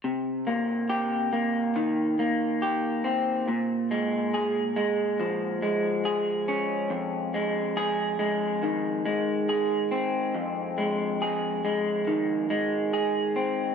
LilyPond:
\new Staff \with { instrumentName = "Clean electric guitar" } { \clef bass \time 4/4 \key f \minor \tempo 4 = 70 c8 bes8 g'8 bes8 ees8 bes8 g'8 c'8 | bes,8 aes8 aes'8 aes8 f8 aes8 aes'8 des'8 | f,8 aes8 aes'8 aes8 ees8 aes8 aes'8 c'8 | f,8 aes8 aes'8 aes8 ees8 aes8 aes'8 c'8 | }